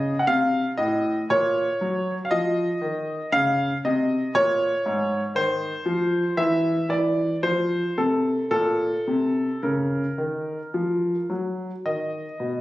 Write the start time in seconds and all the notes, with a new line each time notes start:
Already playing: C#3 D#5
0.19 F#5
0.27 C3 F5
0.78 A2 D#5
1.30 A#2 C#5
1.81 F#3
2.25 F5
2.31 F3 D#5
2.81 D#3
3.32 C#3 F5
3.85 C3 D#5
4.35 A#2 C#5
4.86 G#2
5.35 D#3 C5
5.86 F3
6.37 E3 E5
6.89 E3 D5
7.43 F3 C5
7.98 C3 A4
8.51 A#2 A4
9.08 C3
9.63 C#3 A#4
10.18 D#3
10.74 F3
11.30 F#3
11.86 D#3 D#5
12.40 B2